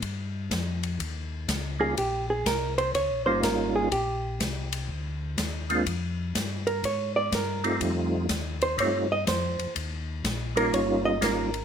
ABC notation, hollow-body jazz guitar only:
X:1
M:4/4
L:1/8
Q:"Swing" 1/4=123
K:Eb
V:1 name="Hollow-body jazz guitar"
z6 z A | G A B c _d c B A | G4 z4 | z3 B _d =d B2 |
z3 c _d e c2 | z3 B _d e B2 |]